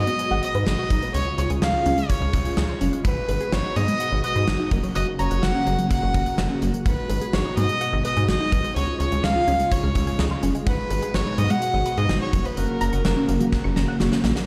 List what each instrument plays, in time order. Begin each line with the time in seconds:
Already playing: string machine B2 G#3 F#4, fiddle D#5
0.07 synth arpeggio sound B3, closed hi-hat
0.19 synth arpeggio sound G#5, closed hi-hat
0.31 analog synth bass G#1, synth arpeggio sound F#5
0.43 synth arpeggio sound D#5, fiddle D#5, closed hi-hat
0.55 analog synth bass G#2, synth arpeggio sound B4, closed hi-hat
0.67 analog synth bass G#1, synth arpeggio sound G#4, fiddle D#5, snare
0.79 synth arpeggio sound F#4
0.90 analog synth bass G#1, synth arpeggio sound D#4, kick, closed hi-hat
1.02 synth arpeggio sound B3, closed hi-hat
1.14 analog synth bass C#2, string machine C#3 F4, fiddle C#5, synth arpeggio sound G#6, closed hi-hat
1.38 analog synth bass C#2, fiddle C#5, synth arpeggio sound C#6, closed hi-hat
1.50 analog synth bass C#2, synth arpeggio sound G#5, closed hi-hat
1.62 analog synth bass C#2, synth arpeggio sound G#4, fiddle F5, snare
1.74 synth arpeggio sound F4
1.86 analog synth bass C#2, synth arpeggio sound C#4, closed hi-hat
1.98 synth arpeggio sound G#3, closed hi-hat
2.10 fiddle C#5, synth arpeggio sound G#6, kick, closed hi-hat
2.22 analog synth bass C#2, synth arpeggio sound F6
2.33 analog synth bass C#2, synth arpeggio sound C#6, kick, closed hi-hat
2.45 synth arpeggio sound G#5, closed hi-hat
2.57 analog synth bass C#2, synth arpeggio sound G#4, snare
2.69 synth arpeggio sound F4
2.81 analog synth bass F#1, synth arpeggio sound C#4, closed hi-hat
2.93 synth arpeggio sound G#3, closed hi-hat
3.05 analog synth bass G#1, string machine B2 F#4, fiddle B4, synth arpeggio sound F#5, kick, closed hi-hat
3.29 analog synth bass G#1, synth arpeggio sound B4, closed hi-hat
3.41 synth arpeggio sound G#4, closed hi-hat
3.52 analog synth bass G#1, synth arpeggio sound F#4, fiddle C#5, snare
3.64 synth arpeggio sound D#4
3.76 analog synth bass G#2, synth arpeggio sound B3, fiddle D#5, closed hi-hat
3.88 synth arpeggio sound G#3, closed hi-hat
4.00 synth arpeggio sound F#5, closed hi-hat
4.12 analog synth bass G#1, synth arpeggio sound D#5
4.24 synth arpeggio sound B4, fiddle D#5, closed hi-hat
4.36 analog synth bass G#2, synth arpeggio sound G#4, closed hi-hat
4.48 analog synth bass G#1, synth arpeggio sound F#4, snare
4.60 synth arpeggio sound D#4
4.71 analog synth bass F#1, string machine C#3 A#3, synth arpeggio sound A#3, kick, closed hi-hat
4.83 synth arpeggio sound F#3, closed hi-hat
4.95 analog synth bass F#1, fiddle D#5, synth arpeggio sound F#6, closed hi-hat
5.19 analog synth bass F#1, fiddle C#5, synth arpeggio sound A#5, closed hi-hat
5.31 analog synth bass F#1, synth arpeggio sound F#5, closed hi-hat
5.43 analog synth bass F#1, synth arpeggio sound F#4, fiddle F#5, snare
5.55 synth arpeggio sound C#4
5.67 analog synth bass F#1, synth arpeggio sound A#3, closed hi-hat
5.79 synth arpeggio sound F#3, closed hi-hat
5.90 fiddle F#5, synth arpeggio sound F#6, kick, closed hi-hat
6.02 analog synth bass F#1, synth arpeggio sound C#6
6.14 analog synth bass F#1, synth arpeggio sound A#5, kick, closed hi-hat
6.26 synth arpeggio sound F#5, closed hi-hat
6.38 analog synth bass F#1, synth arpeggio sound F#4, snare
6.50 synth arpeggio sound C#4
6.62 analog synth bass F#1, synth arpeggio sound A#3, closed hi-hat
6.74 synth arpeggio sound F#3, closed hi-hat
6.86 analog synth bass G#1, string machine B2 G#3 F#4, fiddle B4, synth arpeggio sound F#5, kick, closed hi-hat
7.10 analog synth bass G#1, synth arpeggio sound B4, closed hi-hat
7.21 synth arpeggio sound G#4, closed hi-hat
7.33 analog synth bass G#1, synth arpeggio sound F#4, fiddle C#5, snare
7.45 synth arpeggio sound D#4
7.57 analog synth bass G#2, synth arpeggio sound B3, fiddle D#5, closed hi-hat
7.69 synth arpeggio sound G#3, closed hi-hat
7.81 synth arpeggio sound F#5, closed hi-hat
7.93 analog synth bass G#1, synth arpeggio sound D#5
8.05 synth arpeggio sound B4, fiddle D#5, closed hi-hat
8.17 analog synth bass G#2, synth arpeggio sound G#4, closed hi-hat
8.29 analog synth bass G#1, synth arpeggio sound F#4, fiddle D#5, snare
8.41 synth arpeggio sound D#4
8.52 analog synth bass G#1, synth arpeggio sound B3, kick, closed hi-hat
8.64 synth arpeggio sound G#3, closed hi-hat
8.76 analog synth bass C#2, string machine C#3 F4, fiddle C#5, synth arpeggio sound G#6, closed hi-hat
9.00 analog synth bass C#2, fiddle C#5, synth arpeggio sound C#6, closed hi-hat
9.12 analog synth bass C#2, synth arpeggio sound G#5, closed hi-hat
9.24 analog synth bass C#2, synth arpeggio sound G#4, fiddle F5, snare
9.36 synth arpeggio sound F4
9.48 analog synth bass C#2, synth arpeggio sound C#4, closed hi-hat
9.60 synth arpeggio sound G#3, closed hi-hat
9.71 fiddle C#5, synth arpeggio sound G#6, kick, closed hi-hat
9.83 analog synth bass C#2, synth arpeggio sound F6
9.95 analog synth bass C#2, synth arpeggio sound C#6, kick, closed hi-hat
10.07 synth arpeggio sound G#5, closed hi-hat
10.19 analog synth bass C#2, synth arpeggio sound G#4, snare
10.31 synth arpeggio sound F4
10.43 analog synth bass F#1, synth arpeggio sound C#4, closed hi-hat
10.55 synth arpeggio sound G#3, closed hi-hat
10.67 analog synth bass G#1, string machine B2 F#4, fiddle B4, synth arpeggio sound F#5, kick, closed hi-hat
10.90 analog synth bass G#1, synth arpeggio sound B4, closed hi-hat
11.02 synth arpeggio sound G#4, closed hi-hat
11.14 analog synth bass G#1, synth arpeggio sound F#4, fiddle C#5, snare
11.26 synth arpeggio sound D#4
11.38 analog synth bass G#2, synth arpeggio sound B3, fiddle D#5, closed hi-hat
11.50 synth arpeggio sound G#3, fiddle F#5, closed hi-hat
11.62 synth arpeggio sound F#5, closed hi-hat
11.74 analog synth bass G#1, synth arpeggio sound D#5
11.86 synth arpeggio sound B4, closed hi-hat
11.98 analog synth bass G#2, synth arpeggio sound G#4, fiddle D#5, closed hi-hat
12.09 analog synth bass G#1, synth arpeggio sound F#4, snare
12.21 synth arpeggio sound D#4, fiddle C#5
12.33 analog synth bass F#1, string machine C#3 A#3, synth arpeggio sound A#3, kick, closed hi-hat
12.45 synth arpeggio sound F#3, fiddle B4, closed hi-hat
12.57 analog synth bass F#1, fiddle A#4, synth arpeggio sound F#6, closed hi-hat
12.81 analog synth bass F#1, synth arpeggio sound A#5, closed hi-hat
12.93 analog synth bass F#1, synth arpeggio sound F#5, closed hi-hat
13.05 analog synth bass F#1, synth arpeggio sound F#4, snare
13.17 synth arpeggio sound C#4
13.29 analog synth bass F#1, synth arpeggio sound A#3, closed hi-hat
13.41 synth arpeggio sound F#3, closed hi-hat
13.52 synth arpeggio sound F#6, kick, snare
13.64 analog synth bass F#1, synth arpeggio sound C#6
13.76 analog synth bass F#1, synth arpeggio sound A#5, snare
13.88 synth arpeggio sound F#5
14.00 analog synth bass F#1, synth arpeggio sound F#4, snare
14.12 synth arpeggio sound C#4, snare
14.24 analog synth bass A#1, synth arpeggio sound A#3, snare
14.36 synth arpeggio sound F#3, snare